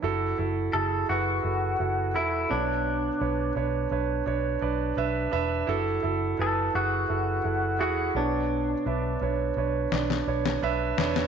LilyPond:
<<
  \new Staff \with { instrumentName = "Clean electric guitar" } { \time 4/4 \key fis \minor \tempo 4 = 85 r4 a'8 fis'4. e'8 d'8~ | d'4 r2. | r4 a'8 fis'4. fis'8 d'8~ | d'4 r2. | }
  \new Staff \with { instrumentName = "Grand piano" } { \time 4/4 \key fis \minor <e' fis' a'>8 <e' fis' a'>8 <e' fis' gis'>8 <e' fis' b'>8 <e' fis' a'>8 <e' fis' a'>8 <e' fis' a'>8 <cis' d' b' cis''>8~ | <cis' d' b' cis''>8 <d' b' cis''>8 <d' b' cis''>8 <d' b' cis''>8 <d' b' cis''>8 <d' b' d''>8 <d' b' e''>8 <d' b' e''>8 | <e' fis' a'>8 <e' fis' a'>8 <e' fis' b'>8 <e' fis' gis'>8 <e' fis' a'>8 <e' fis' a'>8 <e' fis' gis'>8 <d' b' cis''>8~ | <d' b' cis''>8 <d' b' e''>8 <d' b' cis''>8 <d' b' cis''>8 <d' b' d''>8 <d' b' cis''>8 <d' b' e''>8 <d' b' cis''>8 | }
  \new Staff \with { instrumentName = "Grand piano" } { \clef bass \time 4/4 \key fis \minor r2. r8 b,8~ | b,4 r2. | r2. r8 b,8~ | b,4 r2. | }
  \new Staff \with { instrumentName = "Picked electric bass" } { \clef bass \time 4/4 \key fis \minor fis,,8 fis,,8 fis,,8 fis,,8 fis,,8 fis,,8 e,,8 b,,8~ | b,,8 b,,8 b,,8 b,,8 b,,8 b,,8 b,,8 e,,8 | fis,,8 fis,,8 fis,,8 fis,,8 fis,,8 fis,,8 e,,8 b,,8~ | b,,8 b,,8 b,,8 b,,8 b,,8 b,,8 b,,8 e,,8 | }
  \new DrumStaff \with { instrumentName = "Drums" } \drummode { \time 4/4 r4 r4 r4 r4 | r4 r4 r4 r4 | r4 r4 r4 r4 | r4 r4 sn16 sn8 sn16 r8 sn16 sn16 | }
>>